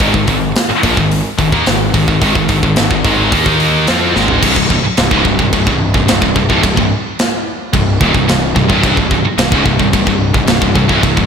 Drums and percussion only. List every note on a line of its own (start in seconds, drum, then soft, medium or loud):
0.00 kick loud
0.00 open hi-hat medium
0.14 kick medium
0.27 kick medium
0.27 open hi-hat medium
0.56 snare loud
0.56 open hi-hat medium
0.83 kick loud
0.83 open hi-hat medium
0.97 kick medium
1.12 open hi-hat medium
1.39 kick medium
1.39 open hi-hat medium
1.52 kick medium
1.66 snare loud
1.66 open hi-hat medium
1.94 kick medium
1.94 open hi-hat medium
2.08 kick medium
2.22 kick medium
2.22 open hi-hat medium
2.35 kick medium
2.49 kick medium
2.49 open hi-hat medium
2.63 kick medium
2.76 snare medium
2.76 open hi-hat medium
2.91 kick medium
3.05 kick medium
3.05 open hi-hat medium
3.32 kick loud
3.32 open hi-hat medium
3.46 kick medium
3.60 open hi-hat medium
3.87 snare loud
3.87 open hi-hat medium
4.16 snare medium
4.28 floor tom medium
4.43 kick loud
4.43 crash loud
4.43 crash medium
4.56 kick medium
4.70 kick medium
4.97 snare loud
4.97 crash medium
5.11 kick loud
5.25 kick medium
5.39 kick medium
5.53 kick loud
5.53 crash medium
5.67 kick loud
5.94 kick medium
6.08 snare loud
6.08 crash medium
6.22 kick loud
6.36 kick medium
6.50 kick medium
6.63 kick loud
6.63 crash medium
6.77 kick medium
7.19 snare loud
7.19 crash medium
7.74 kick loud
7.74 crash medium
8.01 kick loud
8.14 kick medium
8.29 snare loud
8.29 crash medium
8.56 kick medium
8.70 kick medium
8.83 kick loud
8.83 crash medium
8.97 kick medium
9.11 kick medium
9.38 snare loud
9.38 crash medium
9.52 kick loud
9.66 kick medium
9.80 kick medium
9.93 kick loud
9.93 crash medium
10.07 kick medium
10.34 kick medium
10.47 snare loud
10.47 crash medium
10.62 kick loud
10.76 kick medium
10.89 kick medium
11.03 kick medium
11.03 crash medium
11.17 kick medium